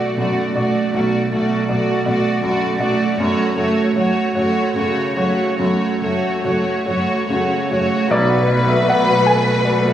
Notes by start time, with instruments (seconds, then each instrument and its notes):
Already playing: grand piano B1 A3 F#4 D5, viola section A3, violin section F#4 D5
0.17 double bass section B1, grand piano F#2, cello section B2, viola section A3, violin section F#4 D5
0.55 double bass section B1, cello section B2, viola section A3, grand piano F#4 D5, violin section F#4 D5
0.93 grand piano B1, double bass section B1, cello section B2, viola section A3, violin section F#4 D5
1.31 double bass section B1, cello section B2, grand piano A3, viola section A3, violin section F#4 D5
1.68 double bass section B1, cello section B2, viola section A3, grand piano F#4 D5, violin section F#4 D5
2.05 double bass section B1, cello section B2, viola section A3, grand piano F#4 D5, violin section F#4 D5
2.42 double bass section B1, grand piano F#2, cello section B2, viola section A3, violin section F#4 D5
2.79 double bass section B1, cello section B2, viola section A3, violin section F#4 D5, grand piano F#4 D5
3.17 double bass section F#1, cello section F#2, grand piano F#2, viola section A3, violin section F#4 C#5
3.56 double bass section F#1, cello section F#2, grand piano A3, viola section A3, violin section F#4 C#5
3.95 double bass section F#1, cello section F#2, viola section A3, grand piano F#4 C#5, violin section F#4 C#5
4.34 double bass section F#1, cello section F#2, viola section A3, grand piano F#4 C#5, violin section F#4 C#5
4.75 double bass section F#1, cello section F#2, grand piano C#3, viola section A3, violin section F#4 C#5
5.16 double bass section F#1, cello section F#2, viola section A3, grand piano F#4 C#5, violin section F#4 C#5
5.58 double bass section F#1, grand piano F#2, cello section F#2, viola section A3, violin section F#4 C#5
6.02 double bass section F#1, cello section F#2, grand piano A3, viola section A3, violin section F#4 C#5
6.44 double bass section F#1, cello section F#2, viola section A3, violin section F#4 C#5, grand piano F#4 C#5
6.86 double bass section F#1, cello section F#2, viola section A3, grand piano F#4 C#5, violin section F#4 C#5
7.28 double bass section F#1, cello section F#2, grand piano C#3, viola section A3, violin section F#4 C#5
7.70 double bass section F#1, cello section F#2, viola section A3, violin section F#4 C#5, grand piano F#4 C#5
8.10 grand piano B1 D5, double bass section B1, cello section B2, viola section A3 F#4, violin section B4
8.30 grand piano F#4
8.49 grand piano D5
8.68 grand piano E5
8.88 grand piano D5 F#5
9.07 grand piano F#4
9.26 grand piano A4 G#5
9.46 grand piano F#4
9.65 grand piano D5
9.83 grand piano A3